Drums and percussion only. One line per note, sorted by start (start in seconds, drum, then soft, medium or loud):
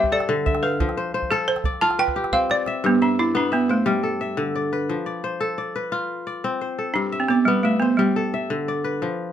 0.04 calabash thump soft
0.20 calabash click medium
0.37 calabash click soft
0.47 calabash thump medium
0.47 calabash click soft
0.55 calabash click medium
0.64 calabash click soft
0.80 calabash thump medium
0.89 calabash click soft
1.22 calabash thump soft
1.56 calabash click medium
1.64 calabash thump medium
1.73 calabash click soft
1.91 calabash click soft
1.99 calabash click soft
2.08 calabash thump medium
2.08 calabash click soft
2.16 calabash click soft
2.24 calabash click medium
2.32 calabash thump soft
2.50 calabash click soft
2.66 calabash click soft